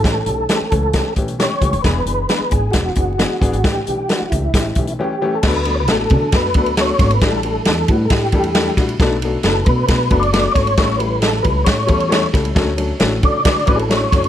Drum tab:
CC |----------------|----------------|----------------|x---------------|
RD |----------------|----------------|----------------|--x-x-x-x-xxx-xx|
HH |x-x-x-x-x-xxx-xx|x-x-x-x-x-x-x-xx|x-x-x-x-x-xx----|----------------|
SD |o---o---o---o---|o---o---o---o---|o---o---o-------|o---o---o---o-o-|
BD |o-----o-o-o---o-|o-----o-o-o---o-|o-----o-o-o-----|o-----o-o-o---o-|

CC |----------------|----------------|----------------|----------------|
RD |x-x-x-x-x-xxx-xx|x-x-x-x-x-xxx-xx|x-x-x-x-x-xxx-xx|x-x-x-x-x-xxx-xx|
HH |----------------|----------------|----------------|----------------|
SD |o---o---o---o-o-|o---o---o---o-o-|o---o---o---o-o-|o---o---o---o-o-|
BD |o-----o-o-o---o-|o-----o-o-o---o-|o-----o-o-o---o-|o-----o-o-o---o-|